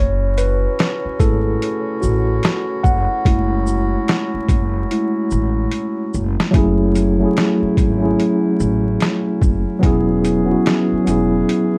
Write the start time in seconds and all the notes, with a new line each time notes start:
Already playing: F#1 F#3 C#4 E4 F#4 C#5
0.38 B4, closed hi-hat, shaker
0.79 snare, closed hi-hat
1.05 muted upright bass stroke
1.20 G#1 A3 E4 G#4 A4, kick, closed hi-hat, shaker
1.62 closed hi-hat
2.01 A1 F#4, shaker
2.43 snare, closed hi-hat
2.83 F#1 F#5, kick, shaker
3.25 F#1 G#3 A3 E4, kick, closed hi-hat
3.67 shaker
4.08 snare, closed hi-hat
4.34 muted upright bass stroke
4.49 F#1, kick, closed hi-hat, shaker
4.91 G#3 A3 E4, closed hi-hat
5.31 A1, shaker
5.71 closed hi-hat
6.14 F#1, shaker
6.40 snare
6.51 F#1 F#3 A3 C#4 E4, kick, closed hi-hat
6.56 E4 G#4
6.95 closed hi-hat, shaker
7.19 F#3 A3 C#4
7.24 E4 G#4
7.37 snare, closed hi-hat
7.62 muted upright bass stroke
7.77 G#1, kick, closed hi-hat, shaker
7.98 F#3 A3 C#4
8.03 E4 G#4
8.20 closed hi-hat
8.60 A1, shaker
9.00 snare, closed hi-hat
9.42 F#1, kick, shaker
9.79 E3 F#3 B3 C#4 F#4 G#4, kick, closed hi-hat
9.83 E1 E4 G#4
10.25 closed hi-hat, shaker
10.44 F#3 B3 C#4
10.49 E4 F#4
10.66 snare, closed hi-hat
10.92 muted upright bass stroke
11.04 E1 F#3 B3 C#4, closed hi-hat, shaker
11.09 E4 G#4
11.49 closed hi-hat